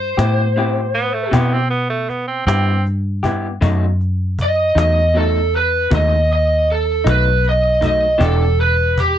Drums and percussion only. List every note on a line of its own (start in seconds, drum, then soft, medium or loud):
0.19 cajon slap medium
0.57 cajon slap soft
0.95 cajon slap soft
1.33 cajon bass loud
1.72 cajon slap soft
2.10 cajon slap soft
2.48 cajon slap loud
2.86 cajon slap soft
3.24 cajon bass medium
3.62 cajon bass medium
4.01 cajon slap soft
4.39 cajon bass medium
4.78 cajon slap medium
5.15 cajon slap soft
5.54 cajon slap soft
5.91 cajon bass loud
6.30 cajon slap soft
6.68 cajon slap soft
7.07 cajon slap loud
7.44 cajon slap soft
7.82 cajon bass medium
8.21 cajon bass medium
8.59 cajon slap soft
8.98 cajon bass medium